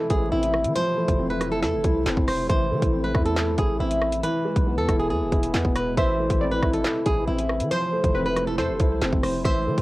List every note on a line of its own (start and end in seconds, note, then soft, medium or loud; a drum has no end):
0.00 4.19 C3 medium
0.00 0.10 E3 loud
0.00 0.74 E3 medium
0.00 0.32 A3 medium
0.00 4.19 A3 medium
0.00 0.31 C4 medium
0.00 0.10 E4 medium
0.00 4.19 E4 medium
0.10 0.31 A1 loud
0.10 0.76 E4 medium
0.10 0.31 G#4 medium
0.10 kick loud
0.10 closed hi-hat medium
0.32 0.66 A1 loud
0.32 0.76 C4 medium
0.32 0.73 E4 medium
0.43 closed hi-hat medium
0.54 cross-stick loud
0.64 0.75 E3 loud
0.64 closed hi-hat medium
0.75 2.48 F3 medium
0.75 1.84 F3 medium
0.75 1.27 C5 loud
0.75 closed hi-hat medium
0.97 2.06 A3 medium
1.08 1.64 F1 loud
1.08 kick medium
1.08 closed hi-hat medium
1.19 2.05 C4 medium
1.30 1.50 B4 medium
1.41 1.83 E4 medium
1.41 cross-stick loud
1.41 closed hi-hat medium
1.52 1.61 A4 medium
1.63 1.75 F2 loud
1.63 2.24 A4 medium
1.63 snare medium
1.73 1.84 F1 loud
1.84 2.05 C2 loud
1.84 2.50 E4 medium
1.84 kick medium
1.84 closed hi-hat medium
2.06 2.16 F1 loud
2.06 2.50 C4 loud
2.06 snare loud
2.06 clap medium
2.06 closed hi-hat medium
2.17 2.48 F1 loud
2.17 kick loud
2.28 2.48 C5 medium
2.28 cross-stick medium
2.28 open hi-hat medium
2.49 2.73 A1 loud
2.49 3.58 E3 loud
2.49 7.67 E3 medium
2.49 3.00 C5 loud
2.49 kick loud
2.49 closed hi-hat medium
2.71 2.82 E3 loud
2.71 3.80 A3 medium
2.82 3.13 A1 loud
2.82 kick medium
2.82 closed hi-hat medium
2.93 3.78 C4 medium
3.04 3.24 B4 medium
3.15 3.56 E2 loud
3.15 3.56 E4 medium
3.15 kick loud
3.15 cross-stick loud
3.26 3.56 A4 medium
3.26 closed hi-hat soft
3.36 snare loud
3.36 clap loud
3.36 closed hi-hat soft
3.58 3.79 A1 loud
3.58 4.23 E4 medium
3.58 3.79 G#4 medium
3.58 kick loud
3.58 closed hi-hat medium
3.80 4.22 A1 loud
3.80 4.23 C4 medium
3.80 4.21 E4 medium
3.91 closed hi-hat medium
4.02 cross-stick loud
4.12 closed hi-hat medium
4.23 5.96 B2 medium
4.23 5.32 E3 loud
4.23 5.96 G#3 medium
4.23 9.41 E4 medium
4.23 4.75 B4 loud
4.23 closed hi-hat medium
4.45 5.54 G#3 medium
4.56 4.79 B1 loud
4.56 kick loud
4.56 closed hi-hat medium
4.67 5.52 B3 medium
4.78 4.88 E2 loud
4.78 4.98 A4 medium
4.89 5.12 E1 loud
4.89 5.31 E4 loud
4.89 kick loud
4.89 cross-stick loud
4.89 closed hi-hat medium
4.99 5.09 G#4 medium
5.10 5.23 E2 loud
5.10 5.72 G#4 medium
5.21 5.32 E1 loud
5.32 5.53 E1 loud
5.32 5.97 E4 medium
5.32 kick medium
5.32 closed hi-hat soft
5.43 closed hi-hat medium
5.54 5.64 E2 loud
5.54 5.97 B3 medium
5.54 snare loud
5.54 clap medium
5.54 closed hi-hat medium
5.65 5.96 E1 loud
5.65 kick loud
5.76 5.96 B4 medium
5.76 cross-stick loud
5.76 closed hi-hat medium
5.97 6.29 A1 loud
5.97 9.82 C3 medium
5.97 7.06 E3 loud
5.97 9.82 A3 medium
5.97 6.49 C5 loud
5.97 6.38 E5 loud
5.97 kick loud
5.97 closed hi-hat medium
6.19 7.28 A3 medium
6.30 6.61 A1 loud
6.30 kick medium
6.30 closed hi-hat medium
6.41 7.26 C4 medium
6.41 7.67 D5 medium
6.51 6.72 B4 medium
6.62 6.83 G#1 loud
6.62 7.05 E4 medium
6.62 kick loud
6.62 cross-stick loud
6.73 7.04 A4 medium
6.73 closed hi-hat soft
6.84 snare loud
6.84 clap medium
6.84 closed hi-hat soft
7.06 7.27 A1 loud
7.06 7.71 E4 medium
7.06 7.26 G#4 medium
7.06 kick medium
7.06 closed hi-hat medium
7.28 7.62 A1 loud
7.28 7.71 C4 medium
7.28 7.68 E4 medium
7.39 closed hi-hat medium
7.49 cross-stick loud
7.60 7.71 E3 loud
7.60 closed hi-hat medium
7.71 8.80 F3 medium
7.71 9.43 F3 medium
7.71 8.22 C5 loud
7.71 8.12 C5 loud
7.71 closed hi-hat medium
7.93 9.02 A3 medium
8.04 8.60 F1 loud
8.04 kick loud
8.04 closed hi-hat medium
8.15 9.00 C4 medium
8.15 8.56 B4 medium
8.26 8.46 B4 medium
8.36 8.79 E4 medium
8.36 cross-stick loud
8.36 closed hi-hat medium
8.47 8.57 A4 medium
8.58 8.71 F2 loud
8.58 9.20 A4 medium
8.58 8.99 C5 medium
8.58 snare medium
8.69 8.79 F1 loud
8.80 9.01 C2 loud
8.80 9.45 E4 medium
8.80 kick loud
8.80 closed hi-hat medium
9.02 9.12 F1 loud
9.02 9.45 C4 loud
9.02 snare loud
9.02 clap medium
9.02 closed hi-hat medium
9.13 9.44 F1 loud
9.13 kick loud
9.23 9.44 C5 medium
9.23 cross-stick loud
9.23 open hi-hat medium
9.45 9.68 A1 loud
9.45 9.82 E3 loud
9.45 9.82 E3 medium
9.45 9.82 E4 medium
9.45 9.82 C5 loud
9.45 9.82 E5 loud
9.45 kick loud
9.45 closed hi-hat medium
9.67 9.77 E3 loud
9.67 9.82 A3 medium
9.78 9.82 A1 loud
9.78 kick medium
9.78 closed hi-hat medium